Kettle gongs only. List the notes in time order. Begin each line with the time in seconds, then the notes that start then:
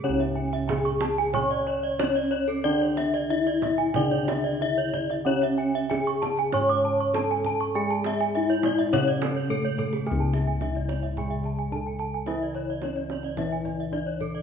Already playing: C#3
0.04 C#4
0.09 C#2
2.00 D4
2.65 D4
3.31 D4
3.95 C#3
4.61 D4
5.26 C#4
5.90 D4
6.54 G#2
7.15 D4
7.76 G#4
8.35 D4
8.93 C#3
9.51 D4
10.07 G#4
10.11 C#2
10.62 D4
11.72 D4
12.28 E4
12.83 D4
13.37 E3
13.92 D4